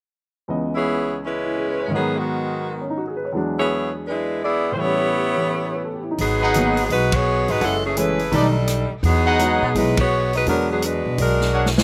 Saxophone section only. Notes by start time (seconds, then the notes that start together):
0.74 B3 E4 G#4 C#5
1.24 G#3 C#4 E4 B4
1.94 F#3 B3 D#4 G#4
2.17 D#3 G#3 B3 F#4
3.58 B3 E4 G#4 C#5
4.07 G#3 D4 E4 B4
4.43 B3 E4 G#4 D5
4.73 C5
4.78 B3 E4 G4 C#5
6.19 F#3 B3 D#4 G#4
6.90 G#3 D#4 F#4 B4
7.13 B3 F#4 G#4 C#5
7.49 G#3 D#4 F#4 B4
7.63 E3 G#3 C#4 A4
7.85 E3 A3 C#4 G#4
7.97 A3 E4 G#4 B4
8.34 G3 D4 D#4 A4
9.05 F#3 B3 D#4 G#4
9.76 G#3 D#4 F#4 B4
9.99 B3 F#4 G#4 C#5
10.36 G#3 D#4 F#4 B4
10.49 F#3 B3 D4 A#4
10.71 F#3 B3 D4 G#4
10.84 G#3 D4 F#4 B4
11.20 G#3 D4 F#4 A#4